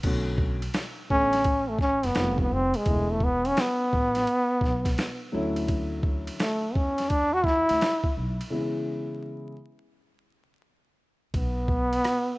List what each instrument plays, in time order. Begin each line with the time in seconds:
0.03 upright bass B1, grand piano D3 A3 B3 C#4 F#4, kick, crash, ride
0.38 kick
0.62 ride
0.74 snare, hi-hat pedal, ride
1.09 upright bass A1, grand piano D3 A3 B3 C#4 A4, trombone C#4, kick
1.33 snare, ride
1.44 kick, ride
1.69 trombone A3
1.79 trombone C#4, kick, snare
2.03 upright bass F#1, trombone B3, snare, ride
2.15 upright bass F1, grand piano D#3 G3 A3 C4 F4, snare, hi-hat pedal, ride
2.38 trombone B3, kick
2.51 upright bass F1, trombone C4
2.74 trombone G#3, ride
2.86 upright bass E1, grand piano D3 E3 A3 B3 E4, kick, ride
3.12 trombone A3
3.20 trombone B3, kick
3.45 trombone C#4, ride
3.57 trombone B3, snare, hi-hat pedal, ride
3.93 upright bass A1, kick
4.15 snare, ride
4.27 ride
4.61 upright bass B1, kick, snare
4.85 kick, snare, ride
4.98 snare, hi-hat pedal, ride
5.32 upright bass D2, grand piano D3 F#3 A3 C#4 E4
5.56 ride
5.68 kick, ride
6.03 kick
6.27 ride
6.40 trombone A3, snare, hi-hat pedal, ride
6.74 upright bass E2, trombone C#4, kick
6.98 snare, ride
7.09 trombone D4, kick, ride
7.33 trombone F#4
7.44 trombone E4, kick, snare
7.69 upright bass D2, snare, ride
7.81 snare, hi-hat pedal, ride
8.04 kick
8.17 upright bass B1
8.41 ride
8.50 grand piano C#3 E3 G#3 B3 E4
11.34 upright bass B1, trombone B3, kick, ride
11.68 kick
11.93 ride
12.04 cross-stick, hi-hat pedal, ride